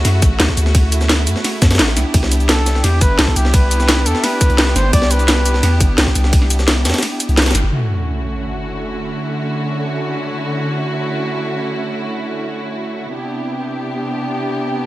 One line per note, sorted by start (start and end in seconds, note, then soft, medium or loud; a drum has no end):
0.00 1.93 C#3 medium
0.00 1.93 A3 medium
0.00 7.68 E4 medium
0.00 1.93 F#4 loud
0.05 0.24 F#2 medium
0.05 snare medium
0.05 closed hi-hat medium
0.05 ride medium
0.22 0.38 A1 medium
0.22 kick loud
0.22 closed hi-hat medium
0.22 shaker medium
0.40 0.48 D2 loud
0.40 snare loud
0.40 closed hi-hat medium
0.40 ride medium
0.40 shaker soft
0.49 kick medium
0.49 snare medium
0.57 1.28 D2 loud
0.57 closed hi-hat medium
0.57 shaker medium
0.66 snare medium
0.75 kick loud
0.75 closed hi-hat medium
0.75 ride medium
0.92 closed hi-hat loud
0.92 closed hi-hat medium
0.92 shaker medium
1.01 snare medium
1.01 shaker soft
1.09 snare loud
1.09 closed hi-hat medium
1.09 closed hi-hat loud
1.09 ride medium
1.27 1.35 F#2 medium
1.27 closed hi-hat medium
1.27 shaker medium
1.36 snare medium
1.44 snare medium
1.44 closed hi-hat medium
1.44 open hi-hat medium
1.44 ride medium
1.62 1.81 F#2 loud
1.62 kick loud
1.62 snare loud
1.62 closed hi-hat medium
1.62 shaker medium
1.71 snare medium
1.71 closed hi-hat medium
1.75 snare medium
1.75 closed hi-hat medium
1.79 1.98 A1 medium
1.79 snare loud
1.79 closed hi-hat medium
1.79 ride medium
1.79 shaker soft
1.88 snare medium
1.97 2.05 C2 medium
1.97 7.68 B3 medium
1.97 7.68 D4 medium
1.97 7.68 G4 loud
1.97 snare medium
1.97 closed hi-hat medium
1.97 shaker medium
2.14 2.83 C2 loud
2.14 kick loud
2.14 closed hi-hat medium
2.14 ride medium
2.23 snare medium
2.32 closed hi-hat medium
2.32 shaker medium
2.40 closed hi-hat soft
2.40 shaker soft
2.49 2.86 A4 loud
2.49 snare loud
2.49 closed hi-hat loud
2.49 closed hi-hat medium
2.49 ride medium
2.66 snare soft
2.66 closed hi-hat medium
2.66 shaker medium
2.75 snare soft
2.84 3.03 E2 medium
2.84 3.03 G4 medium
2.84 snare medium
2.84 closed hi-hat medium
2.84 ride medium
3.01 3.17 G1 medium
3.01 3.21 B4 loud
3.01 kick loud
3.01 closed hi-hat medium
3.01 shaker medium
3.19 3.27 C2 medium
3.19 3.38 A4 medium
3.19 snare loud
3.19 closed hi-hat medium
3.19 ride medium
3.19 shaker soft
3.27 kick medium
3.27 snare medium
3.36 4.07 C2 loud
3.36 3.56 G4 medium
3.36 closed hi-hat medium
3.36 shaker medium
3.45 snare medium
3.54 4.08 B4 loud
3.54 kick loud
3.54 closed hi-hat medium
3.54 ride medium
3.71 closed hi-hat medium
3.71 shaker medium
3.80 snare medium
3.80 shaker soft
3.88 snare loud
3.88 closed hi-hat loud
3.88 closed hi-hat medium
3.88 ride medium
4.06 4.14 E2 medium
4.06 4.25 A4 loud
4.06 closed hi-hat medium
4.06 shaker medium
4.15 snare medium
4.24 4.78 B4 loud
4.24 snare medium
4.24 closed hi-hat medium
4.24 open hi-hat medium
4.24 ride medium
4.41 kick loud
4.41 closed hi-hat medium
4.41 shaker medium
4.49 4.74 C2 medium
4.49 closed hi-hat soft
4.58 snare loud
4.58 closed hi-hat medium
4.58 ride medium
4.58 shaker soft
4.67 snare medium
4.76 4.91 G1 loud
4.76 4.93 C5 loud
4.76 snare medium
4.76 closed hi-hat medium
4.76 shaker medium
4.93 5.62 C2 loud
4.93 5.12 D5 loud
4.93 kick loud
4.93 closed hi-hat medium
4.93 ride medium
5.02 snare medium
5.11 5.81 B4 loud
5.11 closed hi-hat medium
5.11 closed hi-hat loud
5.11 shaker medium
5.19 closed hi-hat soft
5.19 shaker soft
5.28 snare loud
5.28 closed hi-hat loud
5.28 closed hi-hat medium
5.28 ride medium
5.45 closed hi-hat medium
5.45 closed hi-hat loud
5.45 shaker medium
5.54 snare soft
5.63 5.82 E2 medium
5.63 snare medium
5.63 closed hi-hat medium
5.63 ride medium
5.80 5.96 G1 medium
5.80 kick loud
5.80 closed hi-hat medium
5.80 shaker medium
5.98 6.06 C2 medium
5.98 snare loud
5.98 closed hi-hat medium
5.98 ride medium
5.98 shaker soft
6.07 kick medium
6.07 snare medium
6.15 6.87 C2 loud
6.15 closed hi-hat medium
6.15 shaker medium
6.24 snare medium
6.33 kick loud
6.33 closed hi-hat medium
6.33 ride medium
6.42 snare soft
6.50 closed hi-hat medium
6.50 closed hi-hat loud
6.50 shaker medium
6.59 snare medium
6.59 shaker soft
6.68 snare loud
6.68 closed hi-hat medium
6.68 closed hi-hat loud
6.68 ride medium
6.85 6.93 E2 medium
6.85 snare loud
6.85 closed hi-hat medium
6.85 closed hi-hat loud
6.85 shaker medium
6.90 snare loud
6.90 closed hi-hat medium
6.94 snare medium
6.94 closed hi-hat medium
6.98 snare medium
6.98 closed hi-hat medium
7.03 snare medium
7.03 closed hi-hat medium
7.03 open hi-hat medium
7.03 ride medium
7.20 closed hi-hat loud
7.20 closed hi-hat medium
7.20 shaker medium
7.29 7.54 C2 medium
7.29 closed hi-hat soft
7.37 snare loud
7.37 snare medium
7.37 closed hi-hat medium
7.37 ride medium
7.37 shaker soft
7.42 snare medium
7.42 closed hi-hat medium
7.46 snare medium
7.46 closed hi-hat medium
7.51 snare medium
7.51 closed hi-hat medium
7.55 7.63 G1 loud
7.55 snare medium
7.55 closed hi-hat loud
7.55 closed hi-hat medium
7.55 shaker medium
7.64 7.71 G1 loud
7.72 13.09 D3 medium
7.72 13.09 A3 medium
7.72 13.09 C#4 medium
7.72 14.86 E4 medium
7.72 13.09 F#4 medium
7.72 sub drop medium
13.13 14.86 C3 medium
13.13 14.86 B3 medium
13.13 14.86 D4 medium
13.13 14.86 G4 medium